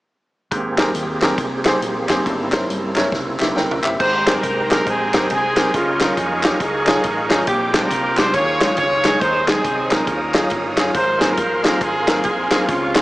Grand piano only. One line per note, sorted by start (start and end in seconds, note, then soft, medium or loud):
0.51 1.18 G#2 medium
0.78 0.89 C4 medium
0.78 0.89 G4 medium
0.78 0.89 G#4 medium
0.78 0.90 A#4 medium
1.22 1.32 C4 medium
1.22 1.33 G4 medium
1.22 1.33 G#4 medium
1.22 1.34 A#4 medium
1.65 1.76 C4 medium
1.65 1.76 G4 medium
1.65 1.77 G#4 medium
1.65 1.77 C5 medium
2.08 2.19 C4 medium
2.08 2.19 G4 medium
2.08 2.20 G#4 medium
2.08 2.20 C5 medium
2.26 2.93 G2 medium
2.52 2.63 C#4 medium
2.52 2.63 E4 medium
2.52 2.63 A#4 medium
2.52 2.64 C5 medium
2.95 3.06 C#4 medium
2.95 3.06 E4 medium
2.95 3.06 A#4 medium
2.95 3.07 C#5 medium
3.39 3.56 G4 medium
3.39 3.55 E5 medium
3.56 3.82 A#4 medium
3.56 3.82 G5 medium
3.83 4.25 G4 soft
3.83 4.24 E5 medium
4.00 4.67 G#2 medium
4.27 4.37 C4 medium
4.27 4.38 G4 medium
4.27 4.38 G#4 medium
4.27 4.38 A#4 medium
4.70 4.80 C4 medium
4.70 4.81 G4 medium
4.70 4.81 G#4 medium
4.70 4.81 A#4 medium
5.13 5.24 C4 medium
5.13 5.24 G4 medium
5.13 5.24 G#4 medium
5.13 5.25 A#4 medium
5.57 5.67 C4 medium
5.57 5.68 G4 medium
5.57 5.68 G#4 medium
5.57 5.68 A#4 medium
5.74 6.40 C#3 medium
6.01 6.11 C#4 medium
6.01 6.12 D#4 medium
6.01 6.12 F4 medium
6.01 6.12 A#4 medium
6.43 6.54 C#4 medium
6.43 6.54 D#4 medium
6.43 6.54 F4 medium
6.43 6.55 G4 medium
6.85 6.97 C#4 medium
6.85 6.97 D#4 medium
6.85 6.97 F4 medium
6.85 6.98 G#4 medium
7.29 7.40 C#4 medium
7.29 7.41 D#4 medium
7.29 7.41 F4 medium
7.29 7.41 G#4 medium
7.47 8.14 A#2 medium
7.73 7.84 G#3 medium
7.73 7.85 C4 medium
7.73 7.85 D4 medium
7.73 7.85 G4 medium
8.17 8.28 G#3 medium
8.17 8.28 C4 medium
8.17 8.29 D4 medium
8.17 8.29 G4 medium
8.35 9.01 D#3 medium
8.61 8.72 G#3 medium
8.61 8.72 C#4 medium
8.61 8.72 D#4 medium
8.61 8.73 F4 medium
9.05 9.15 G#3 medium
9.05 9.16 C#4 medium
9.05 9.16 D#4 medium
9.05 9.16 G#4 medium
9.22 9.88 D#3 medium
9.47 9.58 G#3 medium
9.47 9.58 C4 medium
9.47 9.58 D#4 medium
9.47 9.59 G#4 medium
9.90 10.01 G#3 medium
9.90 10.01 C4 medium
9.90 10.02 D#4 medium
9.90 10.02 A#4 medium
10.08 10.75 D#3 medium
10.34 10.45 C#4 medium
10.34 10.45 D#4 medium
10.34 10.45 F4 medium
10.34 10.46 G#4 medium
10.77 10.88 C#4 medium
10.77 10.88 D#4 medium
10.77 10.89 F4 medium
10.77 10.89 G#4 medium
10.94 11.61 G#2 medium
11.19 11.31 A#3 medium
11.19 11.31 C4 medium
11.19 11.31 F4 medium
11.19 11.32 G#4 medium
11.63 11.74 A#3 medium
11.63 11.75 C4 medium
11.63 11.75 F4 medium
11.63 11.76 G#4 medium
12.07 12.18 A#3 medium
12.07 12.19 C4 medium
12.07 12.19 F4 medium
12.07 12.19 A#4 medium
12.51 12.62 A#3 medium
12.51 12.62 C4 medium
12.51 12.63 F4 medium
12.51 12.63 G#4 medium
12.69 13.02 C#3 medium
12.95 13.02 C4 medium
12.95 13.02 C#4 medium
12.95 13.02 F4 medium
12.95 13.02 G#4 medium